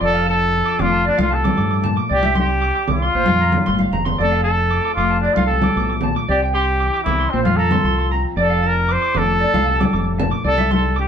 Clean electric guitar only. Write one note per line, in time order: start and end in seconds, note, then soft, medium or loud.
0.01 0.11 D5 medium
0.13 0.24 F5 medium
0.26 0.37 A5 medium
0.66 0.76 D6 medium
0.79 0.90 D6 medium
0.92 1.02 A5 medium
1.05 1.15 D5 medium
1.18 1.28 F5 medium
1.31 1.41 A5 medium
1.44 1.55 D6 medium
1.58 1.68 D6 medium
1.71 1.81 D6 medium
1.84 1.94 A5 medium
1.97 2.07 D6 loud
2.09 2.20 D5 medium
2.23 2.33 E5 medium
2.35 2.46 C6 medium
2.62 2.72 D6 medium
2.75 2.85 D6 medium
2.88 2.99 D6 loud
3.02 3.12 C6 medium
3.15 3.25 C5 medium
3.28 3.38 F5 medium
3.41 3.51 A#5 medium
3.67 3.77 C6 medium
3.79 3.90 F5 medium
3.93 4.03 A#5 medium
4.05 4.16 C6 medium
4.18 4.29 D5 medium
4.32 4.42 F5 medium
4.44 4.55 A5 medium
4.71 4.81 D6 medium
4.85 4.95 D6 medium
4.98 5.08 D6 medium
5.11 5.21 A5 medium
5.24 5.34 D5 medium
5.37 5.47 F5 loud
5.50 5.60 A5 medium
5.63 5.73 D6 medium
5.77 5.87 D6 medium
5.90 5.99 D6 medium
6.04 6.13 A5 medium
6.16 6.26 D6 loud
6.29 6.38 D5 medium
6.42 6.52 G5 medium
6.55 6.64 C6 medium
6.80 6.90 D6 medium
6.94 7.03 D6 medium
7.06 7.16 D6 loud
7.20 7.29 C6 medium
7.33 7.43 C5 medium
7.46 7.56 F5 medium
7.59 7.69 A#5 medium
7.72 7.82 C6 medium
7.85 7.95 C6 medium
7.98 8.08 C6 medium
8.12 8.21 A#5 medium
8.37 8.47 D5 medium
8.50 8.60 F5 medium
8.62 8.72 A5 medium
8.89 8.99 D6 medium
9.02 9.12 D6 medium
9.15 9.25 D6 loud
9.28 9.38 A5 medium
9.40 9.51 D5 medium
9.54 9.64 F5 medium
9.67 9.77 A5 medium
9.80 9.90 D6 medium
9.93 10.03 D6 loud
10.19 10.29 A5 medium
10.31 10.42 D6 loud
10.44 10.55 D5 medium
10.58 10.68 E5 medium
10.71 10.81 C6 medium
10.96 11.07 D6 medium